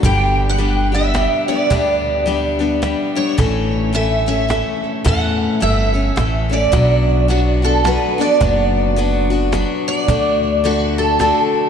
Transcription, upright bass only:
X:1
M:3/4
L:1/8
Q:"Swing" 1/4=108
K:Glyd
V:1 name="Upright bass" clef=bass
G,,,6 | D,,6 | A,,,6 | E,,2 G,,,2 A,,,2 |
B,,,6 | F,,,6 | D,,6 |]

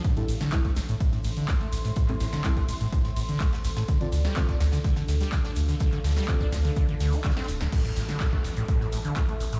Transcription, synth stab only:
X:1
M:4/4
L:1/16
Q:1/4=125
K:Am
V:1 name="Synth stab"
z [G,CEA] z2 [G,CEA]2 z8 z2 | z [G,CEA]2 z [G,CEA] z8 z3 | z [CFAd] z2 [CFAd]2 z8 z2 | z4 [CFAd] z8 z3 |
z16 |]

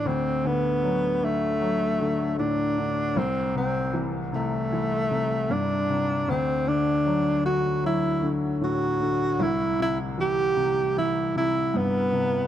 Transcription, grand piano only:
X:1
M:4/4
L:1/8
Q:1/4=77
K:Dmix
V:1 name="Grand piano" clef=bass
D,, D, F, D, F, D, A,, D, | C,, C, E, C, E, C, G,, C, | D,, D, F, D, F, D, A,, D, | C,, C, E, C, E, C, G,, C, |]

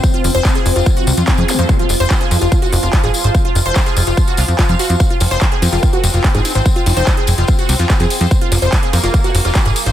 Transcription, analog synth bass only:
X:1
M:4/4
L:1/16
Q:1/4=145
K:Fm
V:1 name="Analog synth bass" clef=bass
z2 F,,, F,,, z2 F,,, F,,, z2 C,, F,, z F,, z F,, | z2 F,,, F,,, z2 F,, F,,, z2 F,,, F,,, z A,,, z A,,, | z2 F,,, F,,, z2 F,,, F,,, z2 C,, F,, z F,, z F,, | z2 F,,, F,,, z2 F,, F,,, z2 F,,, F,,, z A,,, z A,,, |
z2 F,,, F,,, z2 F,,, F,,, z2 C,, F,, z F,, z F,, | z2 F,,, F,,, z2 F,, F,,, z2 F,,, F,,, z A,,, z A,,, |]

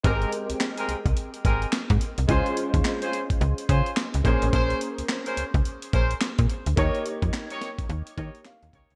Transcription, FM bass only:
X:1
M:4/4
L:1/16
Q:"Swing 16ths" 1/4=107
K:Ab
V:1 name="FM bass" clef=bass
A,,,2 z C,, z2 C,, C,, z2 A,,,2 z A,, z C,, | D,, z2 E,, z4 D,, z D, z2 D,, B,,, =A,,, | B,,,2 z D,, z2 D,, D,, z2 B,,,2 z B,, z =D,, | E,, z2 F,, z4 E,, z E, z2 E,, D,, =D,, |]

